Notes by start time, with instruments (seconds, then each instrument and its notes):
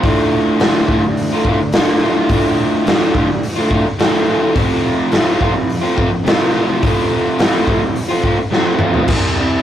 0.03 overdriven electric guitar D2 A2 D3 A3 F4, kick, open hi-hat
0.59 overdriven electric guitar D2 A2 D3 A3 F4, snare, open hi-hat
0.88 overdriven electric guitar A2 D3 A3 F4, kick
1.03 muted overdriven electric guitar stroke
1.17 open hi-hat
1.32 overdriven electric guitar D3 A3 F4
1.45 overdriven electric guitar A2 D3, kick
1.49 overdriven electric guitar A3 F4
1.60 muted overdriven electric guitar stroke
1.72 overdriven electric guitar D2 A2 D3 A3, snare, open hi-hat
1.77 overdriven electric guitar F4
2.01 overdriven electric guitar A2 D3 A3 F4
2.16 overdriven electric guitar D3 A3 F4
2.29 overdriven electric guitar D2 A2 D3 A3 F4, kick, open hi-hat
2.84 overdriven electric guitar D2 A2 D3 A3 F4, open hi-hat
2.88 snare
3.14 overdriven electric guitar A2 D3 A3 F4, kick
3.30 muted overdriven electric guitar stroke
3.43 open hi-hat
3.56 overdriven electric guitar D3 A3 F4
3.71 overdriven electric guitar A2 D3 A3 F4, kick
3.86 muted overdriven electric guitar stroke
3.99 overdriven electric guitar D2 A2 D3 A3 F4, snare, open hi-hat
4.26 overdriven electric guitar A2 D3 A3 F4
4.39 overdriven electric guitar D3 A3 F4
4.54 overdriven electric guitar F2 C3 F3 A3 C4 F4, kick, open hi-hat
5.11 overdriven electric guitar F2 C3 F3 A3 C4 F4, snare, open hi-hat
5.39 overdriven electric guitar F3 A3 C4 F4, kick
5.54 muted overdriven electric guitar stroke
5.70 open hi-hat
5.81 overdriven electric guitar F3 A3 C4 F4
5.96 overdriven electric guitar F3 A3 C4 F4, kick
6.11 muted overdriven electric guitar stroke
6.25 overdriven electric guitar F2 C3 F3 A3 C4 F4, snare, open hi-hat
6.53 overdriven electric guitar F3 A3 C4 F4
6.67 overdriven electric guitar F3 A3 C4 F4
6.82 overdriven electric guitar F2 C3 F3 A3 C4 F4, kick, open hi-hat
7.37 overdriven electric guitar F2 C3 F3 A3 C4 F4, snare, open hi-hat
7.66 overdriven electric guitar F3 A3 C4 F4, kick
7.82 muted overdriven electric guitar stroke
7.96 open hi-hat
8.09 overdriven electric guitar F3 A3 C4 F4
8.23 overdriven electric guitar F3 A3 C4 F4, kick
8.39 muted overdriven electric guitar stroke
8.51 overdriven electric guitar F2 C3 F3 A3 C4 F4, snare
8.79 overdriven electric guitar F3 A3 C4 F4, mid tom
8.94 overdriven electric guitar F3 A3 C4 F4, floor tom
9.08 overdriven electric guitar C3 G3 C4, kick, crash
9.38 overdriven electric guitar C3 G3 C4